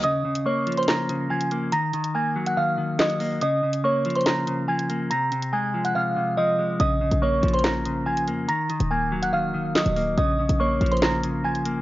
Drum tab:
HH |x-----x-----xxxxx---x-----x-x---|x---x-x-------x-----------x-o---|x-----x-----xxxxx---x-----x-x---|x---x-x-------x-----------------|
CP |----------------x---------------|------------------------x-------|----------------x---------------|--------------------------------|
SD |----------------o---------------|------------------------o-------|----------------o---------------|--------------------------------|

HH |x-----x-----xxxxx---x-----x-x---|x---x-x-------x-----------x-o---|x-----x-----xxxxx---x-----x-x---|
CP |----------------x---------------|------------------------x-------|----------------x---------------|
SD |----------------o---------------|------------------------o-------|----------------o---------------|